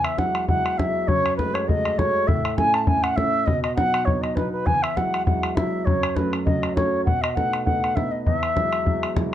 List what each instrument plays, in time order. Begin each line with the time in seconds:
Already playing: upright piano E2
0.04 flute E5, bodhran
0.17 upright piano F#3 G#3 E4, flute F#5, bodhran
0.35 bodhran
0.48 upright piano F#3 G#3 E4, flute F#5, bodhran
0.66 bodhran
0.78 upright piano F#3 G#3 E4, flute E5, bodhran
1.08 upright piano F#2, flute C#5, bodhran
1.26 bodhran
1.37 upright piano G#3 A3 F#4, flute B4, bodhran
1.54 flute C#5, bodhran
1.68 upright piano G#3 A3 F#4, flute D#5, bodhran
1.85 bodhran
1.98 upright piano G#3 A3 F#4, flute C#5, bodhran
2.27 upright piano A2, flute E5, bodhran
2.45 bodhran
2.57 upright piano A3 C#4 E4, flute G#5, bodhran
2.74 flute A5, bodhran
2.87 upright piano A3 C#4 E4, flute G#5, bodhran
3.03 flute F#5, bodhran
3.16 upright piano A3 C#4 E4, flute E5, bodhran
3.46 upright piano B2, flute D#5, bodhran
3.63 flute D#5, bodhran
3.75 upright piano F#3 B3 D#4, flute F#5, bodhran
3.94 bodhran
4.05 upright piano F#3 B3 D#4, flute C#5, bodhran
4.22 flute D#5, bodhran
4.35 upright piano F#3 B3 D#4, flute B4, bodhran
4.52 flute B4
4.66 upright piano E2, flute G#5, bodhran
4.83 flute E5, bodhran
4.97 upright piano F#3 G#3 E4, flute F#5, bodhran
5.14 bodhran
5.26 upright piano F#3 G#3 E4, flute F#5, bodhran
5.43 bodhran
5.55 upright piano F#3 G#3 E4, flute E5, bodhran
5.85 upright piano F#2, flute C#5, bodhran
6.03 bodhran
6.16 upright piano F#3 A3 C#4, flute B4, bodhran
6.33 bodhran
6.45 upright piano F#3 A3 C#4, flute D#5, bodhran
6.63 bodhran
6.75 upright piano F#3 A3 C#4, flute C#5, bodhran
7.05 upright piano B2, flute F#5, bodhran
7.22 flute D#5, bodhran
7.35 upright piano A3 B3 D#4, flute F#5, bodhran
7.53 bodhran
7.65 upright piano A3 B3 D#4, flute F#5, bodhran
7.84 bodhran
7.95 upright piano A3 B3 D#4, flute E5, bodhran
8.11 flute D#5
8.25 upright piano E2, flute E5, bodhran
8.43 bodhran
8.56 upright piano F#3 G#3 E4, bodhran
8.73 bodhran
8.85 upright piano F#3 G#3 E4, bodhran
9.03 bodhran
9.15 upright piano F#3 G#3 E4, bodhran